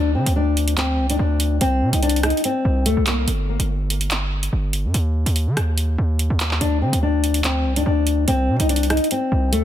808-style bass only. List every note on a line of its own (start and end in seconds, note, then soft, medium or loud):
0.00 0.17 D2 loud
0.15 0.26 D3 loud
0.26 1.00 D2 loud
0.99 1.11 C2 loud
1.09 1.19 D2 loud
1.19 1.59 D2 loud
1.61 1.83 C2 loud
1.82 1.92 C3 loud
1.93 2.33 C2 loud
2.65 2.87 C2 loud
2.86 2.96 D#2 loud
2.97 3.26 C2 loud
3.28 3.58 G1 loud
3.59 4.49 G1 loud
4.53 4.86 G1 loud
4.84 4.94 G2 loud
4.94 5.25 D#2 loud
5.26 5.48 D#2 loud
5.47 5.56 D#3 loud
5.57 5.97 D#2 loud
5.98 6.29 D#2 loud
6.30 6.60 D#2 loud
6.61 6.83 D2 loud
6.82 6.92 D3 loud
6.93 7.67 D2 loud
7.65 7.78 C2 loud
7.76 7.85 D2 loud
7.86 8.26 D2 loud
8.28 8.50 C2 loud
8.48 8.59 C3 loud
8.59 8.99 C2 loud
9.32 9.54 C2 loud
9.53 9.63 D#2 loud